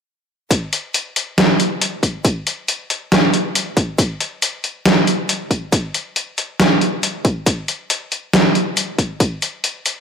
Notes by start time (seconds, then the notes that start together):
0.51 kick, closed hi-hat
0.73 closed hi-hat
0.94 closed hi-hat
1.16 closed hi-hat
1.38 snare, closed hi-hat
1.60 closed hi-hat
1.81 closed hi-hat
2.03 kick, closed hi-hat
2.25 kick, closed hi-hat
2.47 closed hi-hat
2.68 closed hi-hat
2.90 closed hi-hat
3.12 snare, closed hi-hat
3.34 closed hi-hat
3.55 closed hi-hat
3.77 kick, closed hi-hat
3.98 kick, closed hi-hat
4.21 closed hi-hat
4.42 closed hi-hat
4.64 closed hi-hat
4.86 snare, closed hi-hat
5.07 closed hi-hat
5.29 closed hi-hat
5.51 kick, closed hi-hat
5.72 kick, closed hi-hat
5.94 closed hi-hat
6.16 closed hi-hat
6.38 closed hi-hat
6.60 snare, closed hi-hat
6.81 closed hi-hat
7.03 closed hi-hat
7.25 kick, closed hi-hat
7.46 kick, closed hi-hat
7.68 closed hi-hat
7.90 closed hi-hat
8.12 closed hi-hat
8.33 snare, closed hi-hat
8.55 closed hi-hat
8.77 closed hi-hat
8.98 kick, closed hi-hat
9.20 kick, closed hi-hat
9.42 closed hi-hat
9.64 closed hi-hat
9.86 closed hi-hat